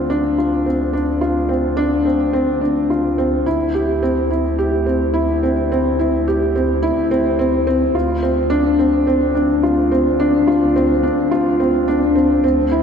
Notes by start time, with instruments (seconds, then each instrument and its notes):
Already playing: double bass section D2, felt piano C4 D4 F4
0.10 felt piano D4
0.38 felt piano F4
0.66 felt piano C4
0.93 felt piano D4
1.21 felt piano F4
1.49 felt piano C4
1.77 felt piano D4
2.05 felt piano C4
2.33 felt piano C4
2.61 felt piano D4
2.90 felt piano F4
3.18 felt piano C4
3.45 double bass section D2, felt piano E4
3.74 felt piano G4
4.03 felt piano C4
4.30 felt piano E4
4.59 felt piano G4
4.86 felt piano C4
5.14 felt piano E4
5.43 felt piano C4
5.72 felt piano C4
5.99 felt piano E4
6.28 felt piano G4
6.55 felt piano C4
6.83 felt piano E4
7.11 felt piano C4
7.39 felt piano C4
7.67 felt piano C4
7.94 double bass section D2, felt piano F4
8.23 felt piano C4
8.50 felt piano D4
8.79 felt piano C4
9.07 felt piano C4
9.35 felt piano D4
9.63 felt piano F4
9.92 felt piano C4
10.20 felt piano D4
10.47 felt piano F4
10.76 felt piano C4
11.03 felt piano D4
11.31 felt piano F4
11.60 felt piano C4
11.88 felt piano D4
12.15 felt piano C4
12.44 double bass section D2, felt piano C4
12.72 felt piano E4